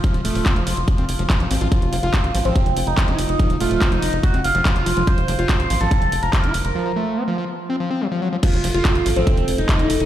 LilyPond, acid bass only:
\new Staff \with { instrumentName = "Acid bass" } { \clef bass \time 4/4 \key f \major \tempo 4 = 143 f16 f16 a8 c'16 f16 f16 r8 c'16 r16 f16 f16 f16 c'16 f'16 | f16 r16 f16 f'16 ges'16 r16 f16 f16 f16 r8. f16 f'16 r8 | f16 f16 a8 c'16 f16 f16 r8 c'16 r16 f16 f16 f'16 f16 f16 | f16 r16 f16 f'16 ges'16 r16 f16 f16 f16 r8. f16 f'16 r8 |
f16 f16 a8 c'16 f16 f16 r8 c'16 f16 c'16 f16 f16 ges16 f16 | f16 r16 f16 f'16 ges'16 r16 f16 f16 f16 r8. f16 f'16 r8 | }